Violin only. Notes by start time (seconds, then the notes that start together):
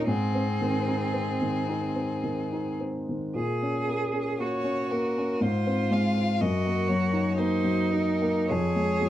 0.08 G#4
4.40 C#5
4.91 A#4
5.42 C5
5.92 F5
6.41 D#5
6.88 C#5
7.37 C5
7.92 A#4
8.49 C#5